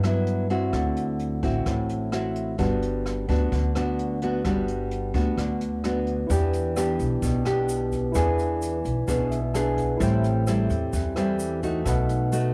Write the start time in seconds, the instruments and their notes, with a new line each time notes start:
Already playing: upright bass G2, nylon-string guitar G2
0.03 nylon-string guitar F#3 B3 E4, cross-stick, closed hi-hat
0.27 closed hi-hat
0.50 nylon-string guitar C4 E4 F#4, closed hi-hat
0.73 upright bass D2, nylon-string guitar D3, kick, cross-stick, closed hi-hat
0.96 closed hi-hat
1.19 closed hi-hat
1.43 upright bass A1, nylon-string guitar C4 E4 F#4, kick, closed hi-hat
1.66 upright bass A1, nylon-string guitar A2, kick, cross-stick, closed hi-hat
1.89 closed hi-hat
2.12 nylon-string guitar C4 E4 F#4, cross-stick, closed hi-hat
2.35 closed hi-hat
2.58 upright bass G1, nylon-string guitar G3 B3 D4 F#4, kick, closed hi-hat
2.82 closed hi-hat
3.06 cross-stick, closed hi-hat
3.29 upright bass D2, nylon-string guitar B3 D4 F#4, kick, closed hi-hat
3.52 upright bass D2, nylon-string guitar D3, kick, closed hi-hat
3.75 nylon-string guitar B3 D4 F#4, cross-stick, closed hi-hat
3.99 closed hi-hat
4.22 nylon-string guitar B3 D4 F#4, closed hi-hat
4.44 upright bass G1, nylon-string guitar G3 B3 D4 F#4, kick, cross-stick, closed hi-hat
4.68 closed hi-hat
4.91 closed hi-hat
5.14 upright bass D2, nylon-string guitar B3 D4 F#4, kick, closed hi-hat
5.37 upright bass D2, nylon-string guitar D3, kick, cross-stick, closed hi-hat
5.61 closed hi-hat
5.84 nylon-string guitar B3 D4 F#4, cross-stick, closed hi-hat
6.07 closed hi-hat
6.27 upright bass E2, nylon-string guitar E3 B3 D4, tine electric piano E4 B4 D5, kick, closed hi-hat, shaker
6.31 nylon-string guitar G4, tine electric piano G5
6.53 closed hi-hat, shaker
6.76 nylon-string guitar B3 D4 G4, cross-stick, closed hi-hat, shaker
6.99 upright bass B1, kick, closed hi-hat, shaker
7.22 upright bass B1, nylon-string guitar B2, kick, closed hi-hat, shaker
7.45 nylon-string guitar B3 D4 G4, cross-stick, closed hi-hat, shaker
7.69 closed hi-hat, shaker
7.92 kick, closed hi-hat, shaker
8.12 upright bass E2, nylon-string guitar E3 B3 D4 G#4, tine electric piano E4 B4, kick, cross-stick, closed hi-hat, shaker
8.16 tine electric piano D5 G#5
8.39 closed hi-hat, shaker
8.62 closed hi-hat, shaker
8.85 upright bass B1, kick, closed hi-hat, shaker
9.07 upright bass B1, nylon-string guitar B2 B3 D4 G#4, kick, cross-stick, closed hi-hat, shaker
9.31 tine electric piano E5, closed hi-hat, shaker
9.54 nylon-string guitar B3 D4 G#4, tine electric piano G#5, cross-stick, closed hi-hat, shaker
9.77 kick, closed hi-hat, shaker
9.97 upright bass A1, nylon-string guitar A2 G3 C4 E4, tine electric piano E4 A4 C5, kick, closed hi-hat, shaker
10.03 tine electric piano G5
10.24 closed hi-hat, shaker
10.47 nylon-string guitar G3 C4 E4, cross-stick, closed hi-hat, shaker
10.70 upright bass E2, kick, closed hi-hat, shaker
10.93 upright bass E2, nylon-string guitar E3, kick, closed hi-hat, shaker
11.15 nylon-string guitar G3 C4 E4, tine electric piano E4 A4 C5 G5, cross-stick, closed hi-hat, shaker
11.39 closed hi-hat, shaker
11.63 nylon-string guitar A3 D#4 F#4, kick, closed hi-hat, shaker
11.83 upright bass B1, nylon-string guitar B2, tine electric piano D#4 A4 B4, kick, cross-stick, closed hi-hat, shaker
11.89 tine electric piano F#5
12.09 closed hi-hat, shaker
12.32 nylon-string guitar A3 D#4 F#4, closed hi-hat, shaker